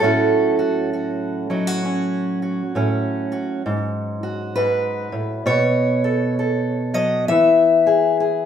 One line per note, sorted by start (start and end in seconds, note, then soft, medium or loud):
0.00 2.74 A2 medium
0.00 0.03 F#3 medium
0.00 1.49 F#3 soft
0.00 1.84 C#4 medium
0.00 0.58 F#4 medium
0.00 2.73 A4 medium
0.59 0.93 F#4 medium
0.93 1.50 F#4 soft
1.50 6.93 F#3 medium
1.50 1.67 D#4 soft
1.67 2.40 F#4 soft
1.85 2.74 C#4 medium
2.42 3.31 F#4 soft
2.75 3.61 A2 medium
2.75 3.61 C#4 medium
3.32 3.61 F#4 medium
3.66 4.56 G#2 medium
4.23 5.43 F#4 medium
4.56 5.12 G#2 medium
4.56 5.46 B4 medium
5.12 5.45 A2 medium
5.46 7.23 B2 medium
5.46 6.94 C#5 medium
6.04 6.38 A4 medium
6.39 7.24 A4 soft
6.94 7.28 F#3 medium
6.94 7.28 D#5 loud
7.28 8.46 E3 medium
7.28 8.46 E5 loud
7.87 8.19 G#4 soft
8.20 8.46 G#4 soft